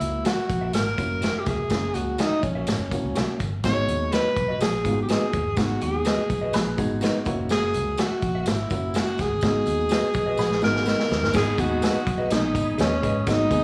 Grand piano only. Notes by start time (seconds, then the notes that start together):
Already playing: A#3 C#4 E4 F#4
0.97 A#3 C#4 E4 F#4
1.70 A#3 C#4 E4 G#4
2.92 A#3 C#4 E4 F#4
3.64 G#3 B3 D#4 F#4
4.84 G#3 B3 D#4 F4
4.92 F#4
5.56 G#3 B3 D#4 F#4
6.77 G#3 B3 D#4 F#4
7.26 A#3 C#4 E4 F#4
8.70 A#3 C#4 E4 F#4
9.43 G#3 B3 D#4 F#4
10.15 D#5
10.39 F#5
10.51 G#5
10.62 G#3 B3 D#4 F#4
10.86 B5
11.33 G#3 B3 D#4 G#4
11.58 G#3 B3 D#4 F#4
12.30 G#3 B3 D#4 G#4
13.27 G#3 B3 D#4 F#4
13.50 G#3 B3 D#4 G#4